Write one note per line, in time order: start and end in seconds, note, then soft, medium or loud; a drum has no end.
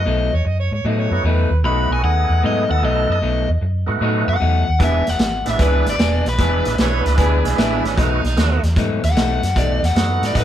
0.00 0.32 D#5 medium
0.05 0.28 B1 medium
0.05 0.32 B2 medium
0.05 0.32 F#3 medium
0.05 0.31 A3 medium
0.05 0.31 D#4 medium
0.32 0.44 E2 medium
0.32 0.49 C#5 medium
0.32 muted clean electric guitar stroke soft
0.45 0.67 F#2 medium
0.45 0.59 D#5 medium
0.45 muted clean electric guitar stroke soft
0.60 0.72 C#5 medium
0.71 0.82 G#2 medium
0.71 0.88 C#5 medium
0.71 muted clean electric guitar stroke soft
0.84 1.06 A2 medium
0.84 1.11 B2 medium
0.84 1.11 F#3 medium
0.84 1.11 A3 medium
0.84 1.10 D#4 medium
0.84 1.02 D#5 medium
1.00 1.12 C#5 medium
1.11 1.22 F#2 medium
1.11 1.23 A3 medium
1.11 1.23 B3 medium
1.11 1.23 D#4 medium
1.11 1.24 F#4 medium
1.11 1.28 C#5 medium
1.11 muted clean electric guitar stroke soft
1.24 1.46 E2 medium
1.24 1.51 B2 medium
1.24 1.51 F#3 medium
1.24 1.51 A3 medium
1.24 1.50 D#4 medium
1.24 1.58 B4 medium
1.50 1.61 D#2 medium
1.50 muted clean electric guitar stroke soft
1.63 1.85 B1 medium
1.63 1.90 B2 medium
1.63 1.90 F#3 medium
1.63 2.02 A3 medium
1.63 1.89 A3 medium
1.63 2.02 B3 medium
1.63 2.03 D#4 medium
1.63 1.89 D#4 medium
1.63 2.03 F#4 medium
1.63 1.90 B5 medium
1.90 2.01 B1 medium
1.90 2.04 G#5 medium
1.90 muted clean electric guitar stroke soft
2.03 2.25 D#2 medium
2.03 2.64 A3 medium
2.03 2.65 B3 medium
2.03 2.65 D#4 soft
2.03 2.65 G#4 medium
2.03 2.42 F#5 medium
2.03 muted clean electric guitar stroke soft
2.29 2.40 E2 medium
2.29 muted clean electric guitar stroke soft
2.43 2.65 G#2 medium
2.43 2.70 B2 medium
2.43 2.69 F#3 medium
2.43 2.69 A3 medium
2.43 2.68 D#4 medium
2.43 2.70 D#5 medium
2.69 2.80 D#2 medium
2.69 3.19 A3 medium
2.69 3.19 B3 medium
2.69 3.19 D#4 medium
2.69 3.19 A4 medium
2.69 2.83 F#5 medium
2.69 muted clean electric guitar stroke soft
2.82 3.04 B1 medium
2.82 3.09 B2 medium
2.82 3.09 F#3 medium
2.82 3.08 A3 medium
2.82 3.08 D#4 medium
2.82 3.10 D#5 medium
3.09 3.20 F#2 medium
3.09 3.49 D#5 medium
3.09 muted clean electric guitar stroke soft
3.22 3.44 B1 medium
3.22 3.48 B2 medium
3.22 3.48 F#3 medium
3.22 3.48 A3 medium
3.22 3.48 D#4 medium
3.49 3.59 E2 medium
3.49 muted clean electric guitar stroke soft
3.61 3.83 F#2 medium
3.61 muted clean electric guitar stroke soft
3.86 3.99 G#2 medium
3.86 4.37 A3 medium
3.86 4.37 B3 medium
3.86 4.37 D#4 medium
3.86 4.38 F#4 medium
3.86 muted clean electric guitar stroke soft
4.01 4.23 A2 medium
4.01 4.28 B2 medium
4.01 4.27 F#3 medium
4.01 4.27 A3 medium
4.01 4.26 D#4 medium
4.27 4.38 F#2 medium
4.27 4.79 F#5 medium
4.27 muted clean electric guitar stroke soft
4.40 4.63 E2 medium
4.40 4.67 B2 medium
4.40 4.67 F#3 medium
4.40 4.67 A3 medium
4.40 4.66 D#4 medium
4.67 4.79 D#2 medium
4.67 muted clean electric guitar stroke soft
4.79 5.02 E1 medium
4.79 5.06 E3 medium
4.79 5.03 G#3 medium
4.79 5.03 B3 soft
4.79 5.07 B3 medium
4.79 5.04 D4 soft
4.79 5.06 D4 medium
4.79 5.04 E4 medium
4.79 5.06 G#4 medium
4.79 kick loud
4.79 snare soft
4.79 closed hi-hat medium
4.84 5.09 E5 medium
5.07 5.18 E1 medium
5.07 5.46 F#5 medium
5.07 muted clean electric guitar stroke soft
5.07 snare soft
5.07 closed hi-hat medium
5.19 5.41 G#1 medium
5.19 muted clean electric guitar stroke soft
5.19 snare medium
5.19 closed hi-hat medium
5.45 5.57 A1 medium
5.45 5.95 G#3 medium
5.45 5.96 B3 medium
5.45 5.96 D4 medium
5.45 5.96 E4 medium
5.45 muted clean electric guitar stroke soft
5.45 snare soft
5.45 closed hi-hat medium
5.50 5.61 E5 medium
5.58 5.81 C#2 medium
5.58 5.85 E3 medium
5.58 5.86 B3 medium
5.58 5.86 D4 medium
5.58 5.85 G#4 medium
5.58 5.87 B4 medium
5.58 kick loud
5.58 snare soft
5.58 closed hi-hat medium
5.86 5.97 G#1 medium
5.86 6.26 D5 medium
5.86 muted clean electric guitar stroke soft
5.86 snare soft
5.86 closed hi-hat medium
5.99 6.21 E1 medium
5.99 6.25 E3 medium
5.99 6.26 B3 medium
5.99 6.26 D4 medium
5.99 6.26 G#4 medium
5.99 snare loud
5.99 closed hi-hat medium
6.26 6.37 B1 medium
6.26 7.42 B4 medium
6.26 muted clean electric guitar stroke soft
6.26 snare soft
6.26 closed hi-hat medium
6.38 6.60 E1 medium
6.38 6.65 E3 medium
6.38 6.76 G#3 medium
6.38 6.77 B3 medium
6.38 6.65 B3 medium
6.38 6.77 D4 medium
6.38 6.64 D4 medium
6.38 6.77 E4 medium
6.38 6.64 G#4 medium
6.38 kick loud
6.38 snare soft
6.38 closed hi-hat medium
6.65 6.76 A1 medium
6.65 muted clean electric guitar stroke soft
6.65 snare soft
6.65 closed hi-hat medium
6.78 7.01 B1 medium
6.78 7.39 G#3 medium
6.78 7.40 B3 medium
6.78 7.40 D4 medium
6.78 7.40 E4 medium
6.78 6.87 G#4 medium
6.78 6.88 A#4 medium
6.78 7.07 C#5 loud
6.78 muted clean electric guitar stroke soft
6.78 snare medium
6.78 closed hi-hat medium
7.05 7.16 C#2 medium
7.05 7.21 B4 medium
7.05 muted clean electric guitar stroke soft
7.05 snare soft
7.05 closed hi-hat medium
7.17 7.40 D2 medium
7.17 7.44 E3 medium
7.17 7.44 B3 medium
7.17 7.44 D4 medium
7.17 7.43 G#4 medium
7.17 7.61 G#4 medium
7.17 kick medium
7.17 snare soft
7.17 closed hi-hat medium
7.44 7.55 B1 medium
7.44 7.94 G#3 medium
7.44 7.94 B3 medium
7.44 7.94 D4 medium
7.44 7.95 E4 medium
7.44 muted clean electric guitar stroke soft
7.44 snare soft
7.44 closed hi-hat medium
7.57 7.79 A1 medium
7.57 7.84 E3 medium
7.57 7.84 B3 medium
7.57 7.83 D4 medium
7.57 7.87 E4 medium
7.57 7.83 G#4 medium
7.57 snare loud
7.57 closed hi-hat medium
7.84 7.94 G#1 medium
7.84 8.00 C#4 medium
7.84 muted clean electric guitar stroke soft
7.84 snare soft
7.84 closed hi-hat medium
7.96 8.19 B1 medium
7.96 8.23 B2 medium
7.96 8.23 F#3 medium
7.96 8.20 A3 medium
7.96 8.23 A3 medium
7.96 8.21 B3 medium
7.96 8.21 D#4 medium
7.96 8.22 D#4 medium
7.96 8.24 D#4 medium
7.96 8.21 F#4 medium
7.96 kick loud
7.96 snare soft
7.96 closed hi-hat medium
8.23 8.34 B1 medium
8.23 8.63 D#4 medium
8.23 muted clean electric guitar stroke soft
8.23 snare soft
8.23 closed hi-hat soft
8.37 8.59 D#2 medium
8.37 8.61 A3 medium
8.37 8.61 B3 medium
8.37 8.61 D#4 medium
8.37 8.61 F#4 medium
8.37 muted clean electric guitar stroke soft
8.37 snare medium
8.37 closed hi-hat medium
8.63 8.74 E2 medium
8.63 muted clean electric guitar stroke soft
8.63 snare soft
8.63 closed hi-hat medium
8.76 8.98 G#2 medium
8.76 9.03 B2 medium
8.76 9.03 F#3 medium
8.76 9.02 A3 medium
8.76 9.02 D#4 medium
8.76 kick loud
8.76 snare soft
8.76 closed hi-hat medium
9.03 9.14 D#2 medium
9.03 9.55 F#5 medium
9.03 muted clean electric guitar stroke soft
9.03 snare soft
9.03 closed hi-hat medium
9.16 9.38 B1 medium
9.16 9.42 B2 medium
9.16 9.43 F#3 medium
9.16 9.42 A3 medium
9.16 9.41 D#4 medium
9.16 snare loud
9.16 closed hi-hat medium
9.42 9.53 F#2 medium
9.42 muted clean electric guitar stroke soft
9.42 snare soft
9.42 closed hi-hat medium
9.55 9.78 B1 medium
9.55 9.82 B2 medium
9.55 9.82 F#3 medium
9.55 9.82 A3 medium
9.55 9.81 D#4 medium
9.55 9.83 D5 medium
9.55 kick loud
9.55 snare soft
9.55 closed hi-hat medium
9.82 9.93 E2 medium
9.82 10.22 F#5 medium
9.82 muted clean electric guitar stroke soft
9.82 snare soft
9.82 closed hi-hat medium
9.95 10.17 F#2 medium
9.95 10.44 A3 medium
9.95 10.44 B3 medium
9.95 10.44 D#4 medium
9.95 10.44 F#4 medium
9.95 muted clean electric guitar stroke soft
9.95 snare loud
9.95 closed hi-hat medium
10.21 10.32 G#2 medium
10.21 muted clean electric guitar stroke soft
10.21 snare soft
10.21 closed hi-hat medium
10.26 10.37 D5 medium
10.34 10.44 A2 medium
10.34 10.44 B2 medium
10.34 10.44 F#3 medium
10.34 10.44 A3 medium
10.34 10.44 D#4 medium
10.34 kick loud
10.34 snare soft
10.34 closed hi-hat medium
10.39 10.44 B4 medium